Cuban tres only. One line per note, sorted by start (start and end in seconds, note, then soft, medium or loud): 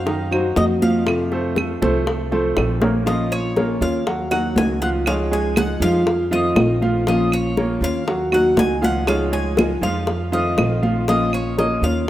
0.00 0.57 F5 loud
0.57 0.64 D#5 medium
0.82 2.78 F5 medium
3.07 3.33 D#5 medium
3.32 3.83 C#5 medium
3.82 4.31 F5 loud
4.31 4.55 F#5 medium
4.58 4.80 G#5 loud
4.82 4.88 F#5 medium
5.07 5.14 F5 loud
5.33 5.56 G#5 medium
5.58 5.82 F#5 medium
5.82 6.34 F5 loud
6.33 6.79 D#5 medium
7.08 7.31 D#5 medium
7.33 7.79 C#5 medium
7.84 8.34 F5 loud
8.34 8.59 F#5 medium
8.59 8.84 G#5 loud
8.84 9.08 F#5 loud
9.08 9.33 F5 loud
9.33 9.83 G#5 loud
9.83 10.29 F5 loud
10.33 10.80 D#5 medium
11.09 11.32 D#5 medium
11.34 11.57 C#5 medium
11.59 11.84 D#5 medium
11.84 12.10 F5 loud